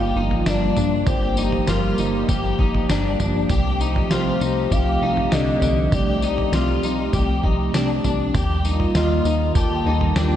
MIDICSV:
0, 0, Header, 1, 6, 480
1, 0, Start_track
1, 0, Tempo, 606061
1, 852, Time_signature, 4, 2, 24, 8
1, 8207, End_track
2, 0, Start_track
2, 0, Title_t, "Soft synth lead"
2, 0, Program_c, 0, 80
2, 0, Note_on_c, 0, 77, 109
2, 366, Note_on_c, 0, 74, 92
2, 378, Note_off_c, 0, 77, 0
2, 849, Note_off_c, 0, 74, 0
2, 852, Note_on_c, 0, 72, 111
2, 1336, Note_on_c, 0, 70, 85
2, 1348, Note_off_c, 0, 72, 0
2, 1814, Note_off_c, 0, 70, 0
2, 3263, Note_on_c, 0, 72, 99
2, 3739, Note_on_c, 0, 77, 121
2, 3751, Note_off_c, 0, 72, 0
2, 4216, Note_on_c, 0, 75, 100
2, 4228, Note_off_c, 0, 77, 0
2, 4706, Note_on_c, 0, 74, 107
2, 4718, Note_off_c, 0, 75, 0
2, 5419, Note_off_c, 0, 74, 0
2, 7090, Note_on_c, 0, 75, 106
2, 7539, Note_off_c, 0, 75, 0
2, 7571, Note_on_c, 0, 81, 105
2, 8056, Note_on_c, 0, 79, 87
2, 8067, Note_off_c, 0, 81, 0
2, 8207, Note_off_c, 0, 79, 0
2, 8207, End_track
3, 0, Start_track
3, 0, Title_t, "Clean electric guitar"
3, 0, Program_c, 1, 27
3, 0, Note_on_c, 1, 67, 89
3, 130, Note_on_c, 1, 63, 73
3, 133, Note_off_c, 1, 67, 0
3, 367, Note_off_c, 1, 63, 0
3, 371, Note_on_c, 1, 62, 90
3, 602, Note_off_c, 1, 62, 0
3, 612, Note_on_c, 1, 62, 71
3, 852, Note_off_c, 1, 62, 0
3, 852, Note_on_c, 1, 67, 87
3, 1091, Note_on_c, 1, 63, 80
3, 1092, Note_off_c, 1, 67, 0
3, 1331, Note_on_c, 1, 65, 87
3, 1332, Note_off_c, 1, 63, 0
3, 1571, Note_off_c, 1, 65, 0
3, 1575, Note_on_c, 1, 63, 76
3, 1811, Note_on_c, 1, 67, 81
3, 1813, Note_off_c, 1, 63, 0
3, 2051, Note_off_c, 1, 67, 0
3, 2055, Note_on_c, 1, 63, 76
3, 2293, Note_off_c, 1, 63, 0
3, 2297, Note_on_c, 1, 62, 84
3, 2527, Note_off_c, 1, 62, 0
3, 2537, Note_on_c, 1, 62, 64
3, 2774, Note_off_c, 1, 62, 0
3, 2777, Note_on_c, 1, 67, 102
3, 3014, Note_off_c, 1, 67, 0
3, 3014, Note_on_c, 1, 63, 72
3, 3253, Note_off_c, 1, 63, 0
3, 3256, Note_on_c, 1, 65, 74
3, 3494, Note_off_c, 1, 65, 0
3, 3495, Note_on_c, 1, 63, 76
3, 3734, Note_off_c, 1, 63, 0
3, 3736, Note_on_c, 1, 67, 83
3, 3974, Note_off_c, 1, 67, 0
3, 3981, Note_on_c, 1, 63, 83
3, 4216, Note_off_c, 1, 63, 0
3, 4217, Note_on_c, 1, 50, 93
3, 4444, Note_off_c, 1, 50, 0
3, 4454, Note_on_c, 1, 50, 65
3, 4693, Note_off_c, 1, 50, 0
3, 4695, Note_on_c, 1, 67, 91
3, 4934, Note_off_c, 1, 67, 0
3, 4936, Note_on_c, 1, 63, 77
3, 5174, Note_off_c, 1, 63, 0
3, 5176, Note_on_c, 1, 65, 79
3, 5414, Note_off_c, 1, 65, 0
3, 5417, Note_on_c, 1, 63, 76
3, 5654, Note_off_c, 1, 63, 0
3, 5655, Note_on_c, 1, 67, 86
3, 5894, Note_off_c, 1, 67, 0
3, 5895, Note_on_c, 1, 63, 78
3, 6130, Note_off_c, 1, 63, 0
3, 6133, Note_on_c, 1, 62, 85
3, 6367, Note_off_c, 1, 62, 0
3, 6377, Note_on_c, 1, 62, 67
3, 6614, Note_off_c, 1, 62, 0
3, 6614, Note_on_c, 1, 67, 95
3, 6853, Note_off_c, 1, 67, 0
3, 6853, Note_on_c, 1, 63, 72
3, 7092, Note_off_c, 1, 63, 0
3, 7095, Note_on_c, 1, 65, 72
3, 7333, Note_off_c, 1, 65, 0
3, 7334, Note_on_c, 1, 63, 78
3, 7572, Note_on_c, 1, 67, 99
3, 7573, Note_off_c, 1, 63, 0
3, 7812, Note_off_c, 1, 67, 0
3, 7813, Note_on_c, 1, 63, 84
3, 8050, Note_off_c, 1, 63, 0
3, 8054, Note_on_c, 1, 62, 92
3, 8207, Note_off_c, 1, 62, 0
3, 8207, End_track
4, 0, Start_track
4, 0, Title_t, "Analog synth pad"
4, 0, Program_c, 2, 89
4, 0, Note_on_c, 2, 53, 88
4, 0, Note_on_c, 2, 55, 73
4, 0, Note_on_c, 2, 58, 66
4, 0, Note_on_c, 2, 65, 89
4, 833, Note_off_c, 2, 65, 0
4, 853, Note_on_c, 2, 67, 94
4, 2740, Note_off_c, 2, 55, 0
4, 2740, Note_off_c, 2, 58, 0
4, 2753, Note_off_c, 2, 67, 0
4, 2769, Note_on_c, 2, 60, 73
4, 2769, Note_on_c, 2, 67, 89
4, 2771, Note_on_c, 2, 57, 70
4, 6579, Note_off_c, 2, 53, 0
4, 6579, Note_off_c, 2, 60, 0
4, 6579, Note_off_c, 2, 67, 0
4, 6580, Note_off_c, 2, 57, 0
4, 6608, Note_on_c, 2, 51, 72
4, 6609, Note_on_c, 2, 55, 77
4, 6609, Note_on_c, 2, 58, 66
4, 6610, Note_on_c, 2, 65, 82
4, 8207, Note_off_c, 2, 51, 0
4, 8207, Note_off_c, 2, 55, 0
4, 8207, Note_off_c, 2, 58, 0
4, 8207, Note_off_c, 2, 65, 0
4, 8207, End_track
5, 0, Start_track
5, 0, Title_t, "Analog synth bass"
5, 0, Program_c, 3, 38
5, 0, Note_on_c, 3, 31, 101
5, 100, Note_off_c, 3, 31, 0
5, 124, Note_on_c, 3, 31, 93
5, 339, Note_off_c, 3, 31, 0
5, 371, Note_on_c, 3, 31, 93
5, 582, Note_off_c, 3, 31, 0
5, 609, Note_on_c, 3, 31, 107
5, 822, Note_off_c, 3, 31, 0
5, 846, Note_on_c, 3, 31, 102
5, 1271, Note_off_c, 3, 31, 0
5, 1329, Note_on_c, 3, 31, 91
5, 1542, Note_off_c, 3, 31, 0
5, 1570, Note_on_c, 3, 31, 95
5, 1782, Note_off_c, 3, 31, 0
5, 1812, Note_on_c, 3, 31, 113
5, 2023, Note_off_c, 3, 31, 0
5, 2051, Note_on_c, 3, 31, 93
5, 2263, Note_off_c, 3, 31, 0
5, 2291, Note_on_c, 3, 31, 89
5, 2503, Note_off_c, 3, 31, 0
5, 2529, Note_on_c, 3, 31, 109
5, 2742, Note_off_c, 3, 31, 0
5, 2770, Note_on_c, 3, 36, 98
5, 3194, Note_off_c, 3, 36, 0
5, 3250, Note_on_c, 3, 36, 112
5, 3462, Note_off_c, 3, 36, 0
5, 3492, Note_on_c, 3, 36, 85
5, 3703, Note_off_c, 3, 36, 0
5, 3733, Note_on_c, 3, 36, 109
5, 3944, Note_off_c, 3, 36, 0
5, 3971, Note_on_c, 3, 36, 85
5, 4182, Note_off_c, 3, 36, 0
5, 4210, Note_on_c, 3, 36, 106
5, 4422, Note_off_c, 3, 36, 0
5, 4447, Note_on_c, 3, 36, 110
5, 4661, Note_off_c, 3, 36, 0
5, 4691, Note_on_c, 3, 36, 106
5, 5114, Note_off_c, 3, 36, 0
5, 5168, Note_on_c, 3, 36, 118
5, 5381, Note_off_c, 3, 36, 0
5, 5408, Note_on_c, 3, 36, 90
5, 5621, Note_off_c, 3, 36, 0
5, 5650, Note_on_c, 3, 36, 117
5, 5862, Note_off_c, 3, 36, 0
5, 5889, Note_on_c, 3, 36, 99
5, 6101, Note_off_c, 3, 36, 0
5, 6124, Note_on_c, 3, 36, 89
5, 6339, Note_off_c, 3, 36, 0
5, 6369, Note_on_c, 3, 36, 109
5, 6581, Note_off_c, 3, 36, 0
5, 6609, Note_on_c, 3, 39, 94
5, 7033, Note_off_c, 3, 39, 0
5, 7088, Note_on_c, 3, 39, 118
5, 7301, Note_off_c, 3, 39, 0
5, 7325, Note_on_c, 3, 39, 96
5, 7539, Note_off_c, 3, 39, 0
5, 7566, Note_on_c, 3, 39, 103
5, 7780, Note_off_c, 3, 39, 0
5, 7806, Note_on_c, 3, 39, 84
5, 8020, Note_off_c, 3, 39, 0
5, 8048, Note_on_c, 3, 39, 102
5, 8207, Note_off_c, 3, 39, 0
5, 8207, End_track
6, 0, Start_track
6, 0, Title_t, "Drums"
6, 246, Note_on_c, 9, 43, 58
6, 326, Note_off_c, 9, 43, 0
6, 366, Note_on_c, 9, 54, 87
6, 367, Note_on_c, 9, 38, 94
6, 446, Note_off_c, 9, 38, 0
6, 446, Note_off_c, 9, 54, 0
6, 606, Note_on_c, 9, 43, 63
6, 606, Note_on_c, 9, 54, 65
6, 685, Note_off_c, 9, 43, 0
6, 685, Note_off_c, 9, 54, 0
6, 844, Note_on_c, 9, 43, 107
6, 844, Note_on_c, 9, 54, 64
6, 847, Note_on_c, 9, 36, 111
6, 923, Note_off_c, 9, 43, 0
6, 923, Note_off_c, 9, 54, 0
6, 926, Note_off_c, 9, 36, 0
6, 1085, Note_on_c, 9, 54, 75
6, 1164, Note_off_c, 9, 54, 0
6, 1207, Note_on_c, 9, 43, 70
6, 1286, Note_off_c, 9, 43, 0
6, 1326, Note_on_c, 9, 38, 108
6, 1326, Note_on_c, 9, 54, 95
6, 1405, Note_off_c, 9, 38, 0
6, 1405, Note_off_c, 9, 54, 0
6, 1567, Note_on_c, 9, 54, 64
6, 1646, Note_off_c, 9, 54, 0
6, 1811, Note_on_c, 9, 36, 92
6, 1811, Note_on_c, 9, 43, 68
6, 1811, Note_on_c, 9, 54, 72
6, 1890, Note_off_c, 9, 36, 0
6, 1891, Note_off_c, 9, 43, 0
6, 1891, Note_off_c, 9, 54, 0
6, 2051, Note_on_c, 9, 36, 79
6, 2130, Note_off_c, 9, 36, 0
6, 2174, Note_on_c, 9, 43, 61
6, 2253, Note_off_c, 9, 43, 0
6, 2293, Note_on_c, 9, 38, 100
6, 2293, Note_on_c, 9, 54, 82
6, 2372, Note_off_c, 9, 54, 0
6, 2373, Note_off_c, 9, 38, 0
6, 2533, Note_on_c, 9, 43, 61
6, 2533, Note_on_c, 9, 54, 67
6, 2612, Note_off_c, 9, 43, 0
6, 2612, Note_off_c, 9, 54, 0
6, 2768, Note_on_c, 9, 43, 105
6, 2768, Note_on_c, 9, 54, 69
6, 2771, Note_on_c, 9, 36, 113
6, 2847, Note_off_c, 9, 43, 0
6, 2847, Note_off_c, 9, 54, 0
6, 2850, Note_off_c, 9, 36, 0
6, 3015, Note_on_c, 9, 54, 62
6, 3094, Note_off_c, 9, 54, 0
6, 3136, Note_on_c, 9, 43, 71
6, 3215, Note_off_c, 9, 43, 0
6, 3253, Note_on_c, 9, 38, 105
6, 3253, Note_on_c, 9, 54, 95
6, 3332, Note_off_c, 9, 38, 0
6, 3332, Note_off_c, 9, 54, 0
6, 3495, Note_on_c, 9, 54, 67
6, 3574, Note_off_c, 9, 54, 0
6, 3734, Note_on_c, 9, 36, 98
6, 3737, Note_on_c, 9, 43, 73
6, 3737, Note_on_c, 9, 54, 72
6, 3814, Note_off_c, 9, 36, 0
6, 3816, Note_off_c, 9, 43, 0
6, 3816, Note_off_c, 9, 54, 0
6, 4096, Note_on_c, 9, 43, 56
6, 4176, Note_off_c, 9, 43, 0
6, 4212, Note_on_c, 9, 54, 79
6, 4213, Note_on_c, 9, 38, 97
6, 4292, Note_off_c, 9, 38, 0
6, 4292, Note_off_c, 9, 54, 0
6, 4452, Note_on_c, 9, 43, 65
6, 4452, Note_on_c, 9, 54, 66
6, 4531, Note_off_c, 9, 43, 0
6, 4531, Note_off_c, 9, 54, 0
6, 4690, Note_on_c, 9, 43, 125
6, 4690, Note_on_c, 9, 54, 64
6, 4691, Note_on_c, 9, 36, 127
6, 4770, Note_off_c, 9, 36, 0
6, 4770, Note_off_c, 9, 43, 0
6, 4770, Note_off_c, 9, 54, 0
6, 4929, Note_on_c, 9, 54, 67
6, 5008, Note_off_c, 9, 54, 0
6, 5053, Note_on_c, 9, 43, 60
6, 5133, Note_off_c, 9, 43, 0
6, 5171, Note_on_c, 9, 38, 113
6, 5171, Note_on_c, 9, 54, 96
6, 5250, Note_off_c, 9, 38, 0
6, 5250, Note_off_c, 9, 54, 0
6, 5412, Note_on_c, 9, 54, 61
6, 5491, Note_off_c, 9, 54, 0
6, 5648, Note_on_c, 9, 43, 67
6, 5648, Note_on_c, 9, 54, 71
6, 5651, Note_on_c, 9, 36, 91
6, 5728, Note_off_c, 9, 43, 0
6, 5728, Note_off_c, 9, 54, 0
6, 5730, Note_off_c, 9, 36, 0
6, 5889, Note_on_c, 9, 36, 90
6, 5968, Note_off_c, 9, 36, 0
6, 6132, Note_on_c, 9, 38, 98
6, 6132, Note_on_c, 9, 54, 82
6, 6211, Note_off_c, 9, 38, 0
6, 6211, Note_off_c, 9, 54, 0
6, 6371, Note_on_c, 9, 43, 68
6, 6371, Note_on_c, 9, 54, 59
6, 6450, Note_off_c, 9, 43, 0
6, 6450, Note_off_c, 9, 54, 0
6, 6609, Note_on_c, 9, 36, 121
6, 6610, Note_on_c, 9, 43, 114
6, 6610, Note_on_c, 9, 54, 71
6, 6688, Note_off_c, 9, 36, 0
6, 6689, Note_off_c, 9, 43, 0
6, 6689, Note_off_c, 9, 54, 0
6, 6847, Note_on_c, 9, 54, 66
6, 6927, Note_off_c, 9, 54, 0
6, 6968, Note_on_c, 9, 43, 63
6, 7047, Note_off_c, 9, 43, 0
6, 7088, Note_on_c, 9, 38, 106
6, 7088, Note_on_c, 9, 54, 99
6, 7167, Note_off_c, 9, 38, 0
6, 7167, Note_off_c, 9, 54, 0
6, 7327, Note_on_c, 9, 54, 64
6, 7406, Note_off_c, 9, 54, 0
6, 7565, Note_on_c, 9, 43, 69
6, 7565, Note_on_c, 9, 54, 71
6, 7568, Note_on_c, 9, 36, 104
6, 7644, Note_off_c, 9, 43, 0
6, 7644, Note_off_c, 9, 54, 0
6, 7647, Note_off_c, 9, 36, 0
6, 7928, Note_on_c, 9, 43, 71
6, 8007, Note_off_c, 9, 43, 0
6, 8046, Note_on_c, 9, 38, 107
6, 8046, Note_on_c, 9, 54, 79
6, 8125, Note_off_c, 9, 54, 0
6, 8126, Note_off_c, 9, 38, 0
6, 8207, End_track
0, 0, End_of_file